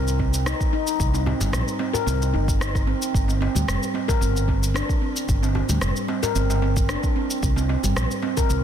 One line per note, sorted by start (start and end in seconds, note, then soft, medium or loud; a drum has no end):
0.00 0.52 C2 medium
0.08 shaker soft
0.19 0.45 C4 medium
0.19 kick medium
0.19 darbuka ka medium
0.34 darbuka tek soft
0.34 shaker medium
0.46 0.72 D#4 medium
0.46 cross-stick medium
0.46 shaker medium
0.61 kick loud
0.61 shaker soft
0.73 0.87 D#4 medium
0.87 shaker medium
1.00 1.32 C2 medium
1.00 kick loud
1.00 shaker medium
1.14 1.25 C4 medium
1.14 darbuka ka medium
1.14 shaker soft
1.26 1.39 C4 medium
1.26 darbuka tek medium
1.26 darbuka dum medium
1.40 1.49 G1 medium
1.40 1.79 G3 medium
1.40 darbuka dum medium
1.40 shaker medium
1.53 1.62 A#1 medium
1.53 cross-stick medium
1.53 shaker medium
1.68 shaker soft
1.79 1.94 C4 medium
1.79 darbuka tek medium
1.93 2.05 A#4 medium
1.93 darbuka tek medium
1.93 darbuka dum medium
1.93 shaker medium
2.06 2.35 C2 medium
2.06 2.15 C4 medium
2.06 darbuka ka medium
2.06 shaker medium
2.22 darbuka ka medium
2.22 shaker soft
2.33 2.93 G1 medium
2.33 2.47 D#4 medium
2.33 darbuka ka soft
2.48 kick loud
2.48 shaker medium
2.60 2.69 D#4 medium
2.60 cross-stick medium
2.60 shaker medium
2.75 kick loud
2.75 cross-stick soft
2.75 shaker soft
2.87 3.01 C4 medium
2.87 darbuka ka soft
3.02 shaker medium
3.14 3.47 G1 medium
3.14 kick loud
3.14 shaker soft
3.28 3.40 C4 medium
3.28 darbuka ka medium
3.28 shaker soft
3.41 3.54 C4 medium
3.41 darbuka tek medium
3.55 3.63 D2 medium
3.55 3.93 G3 medium
3.55 darbuka dum medium
3.55 shaker medium
3.68 3.77 F1 medium
3.68 cross-stick medium
3.68 shaker medium
3.83 shaker soft
3.94 4.08 C4 medium
3.94 darbuka tek medium
4.08 4.20 A#4 medium
4.08 kick medium
4.08 darbuka tek medium
4.08 darbuka dum medium
4.08 shaker medium
4.21 4.80 G1 medium
4.21 4.29 C4 medium
4.21 shaker medium
4.37 shaker soft
4.48 4.74 C4 medium
4.48 kick medium
4.48 darbuka ka medium
4.63 darbuka tek soft
4.63 shaker medium
4.74 5.00 D4 medium
4.74 cross-stick medium
4.74 shaker medium
4.89 kick loud
4.89 shaker soft
5.02 5.15 C4 medium
5.16 shaker medium
5.29 5.61 G1 medium
5.29 kick loud
5.29 shaker soft
5.43 5.54 C4 medium
5.43 darbuka ka medium
5.43 shaker soft
5.55 5.68 C4 medium
5.55 darbuka tek medium
5.55 darbuka dum medium
5.69 5.77 D2 medium
5.69 6.08 G3 medium
5.69 darbuka dum medium
5.69 shaker medium
5.81 5.91 F1 medium
5.81 cross-stick medium
5.81 shaker soft
5.96 shaker soft
6.08 6.22 C4 medium
6.08 darbuka tek medium
6.23 6.34 A#4 medium
6.23 darbuka tek medium
6.23 darbuka dum medium
6.23 shaker medium
6.35 6.95 G1 medium
6.35 6.44 C4 medium
6.35 darbuka ka medium
6.35 shaker medium
6.50 darbuka ka medium
6.50 shaker soft
6.62 6.88 C4 medium
6.62 darbuka ka medium
6.77 kick medium
6.77 shaker medium
6.89 7.15 D4 medium
6.89 cross-stick medium
6.89 shaker soft
7.03 kick medium
7.03 shaker soft
7.16 7.30 C4 medium
7.16 darbuka ka soft
7.31 shaker medium
7.43 7.75 C2 medium
7.43 kick loud
7.43 shaker soft
7.56 7.68 C4 medium
7.56 darbuka ka medium
7.56 shaker soft
7.69 7.83 C4 medium
7.69 darbuka tek medium
7.83 7.91 G1 medium
7.83 8.22 G3 medium
7.83 darbuka dum medium
7.83 shaker medium
7.96 8.05 A#1 medium
7.96 cross-stick medium
7.96 shaker soft
8.11 shaker soft
8.23 8.37 C4 medium
8.23 darbuka tek medium
8.37 8.49 A#4 medium
8.37 kick medium
8.37 darbuka tek medium
8.37 darbuka dum medium
8.37 shaker medium
8.50 8.64 C2 medium
8.50 8.58 C4 medium
8.50 shaker medium